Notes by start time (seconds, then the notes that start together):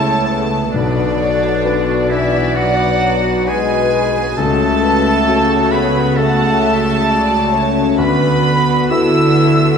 Already playing: C#2 C#3 A3 B3 E4 A4 B4 C#5 E5 A5 B5
0.05 B3
0.26 A3 A4
0.51 B3
0.72 B1 B2 D3 B3 D4 F#4 B4 D5
0.97 F#3
1.19 C#5
1.43 F#4
1.64 D4 F#4 B4 D5
1.88 C#6
2.10 E3 E4 E5 F#5
2.35 B5
2.55 F#4 F#5
2.60 F#3
2.79 B5
3.02 F#5
3.46 G#3 G#4 B4 G#5
3.70 F#4
4.15 F#3
4.35 C#2 C#3 A3 F#4 A4 A5
4.60 A3
4.81 B4
5.04 F#4
5.26 C#3 F#4 A4 C#5
5.71 B3 B4 F#5 B5
5.95 A5
6.16 A3 A4 F#5 A5
6.61 E5 F#5
7.07 A4 D5
7.31 F#4
7.53 C#4 C#5
7.76 A3
7.96 D2 D3 B3 F#4 B4 B5
8.21 A3
8.44 B3
8.68 F#4
8.90 B3 E4 F#4 A4 E5 E6
9.15 B4
9.37 F#5
9.59 A5